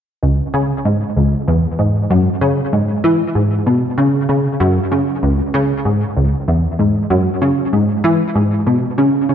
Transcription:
0.23 C#2
0.54 C#3
0.85 G#2
1.16 C#2
1.48 E2
1.79 G#2
2.10 F#2
2.41 C#3
2.73 G#2
3.04 E3
3.35 G#2
3.66 B2
3.98 C#3
4.29 C#3
4.60 F#2
4.91 C#3
5.23 C#2
5.54 C#3
5.85 G#2
6.17 C#2
6.48 E2
6.79 G#2
7.10 F#2
7.42 C#3
7.73 G#2
8.04 E3
8.35 G#2
8.67 B2
8.98 C#3
9.29 C#3

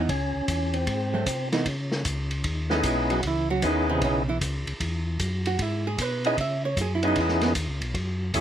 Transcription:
0.09 C#2 C#4, kick, ride
0.35 C#2
0.48 E2, kick, hi-hat pedal, ride
0.74 C4, ride
0.87 G#2, kick, ride
1.14 F#3 A3 C4
1.26 C3, kick, hi-hat pedal, ride
1.52 E3 B3 D#4, snare, ride
1.66 C#3, kick, ride
1.92 snare
2.05 C#2, kick, hi-hat pedal, ride
2.31 ride
2.44 D#2, kick, ride
2.70 A3 B3 C#4 D#4 E4 G#4 A4, snare
2.83 B1, kick, hi-hat pedal, ride
2.88 G#3 G#4
3.10 F#3 F#4, ride
3.23 C#2 E3, kick, ride
3.27 E4
3.50 F#3 F#4
3.62 D#2 D#3 B3 C#4 D#4 E4 G#4, kick, hi-hat pedal, ride
3.66 D#4
3.89 C3 C4
4.01 B1 C#3 C#4, kick, ride
4.29 E3 E4
4.41 C#2, kick, hi-hat pedal, ride
4.67 C#2, ride
4.80 E2, kick, ride
5.20 F#2, kick, hi-hat pedal, ride
5.46 F#4, ride
5.59 G#2 E4, kick, ride
5.87 G#4
5.98 B2 B4, kick, hi-hat pedal, ride
6.24 B3 C#4 D#4 E4 G#4 D#5, ride
6.37 C#3 E5, kick, ride
6.65 C#5
6.77 F#2, kick, hi-hat pedal, ride
6.81 G#4
6.95 E4
7.03 B3 C#4 D#4 E4 G#4, ride
7.08 D#4
7.16 E2, kick, ride
7.20 E4
7.29 snare
7.41 B3, snare, ride
7.55 D#2, kick, hi-hat pedal, ride
7.68 C#2
7.81 B1, ride
7.94 F#2, kick, ride
8.34 E2 A3 C#4 E4 F#4 G#4, kick, hi-hat pedal, ride

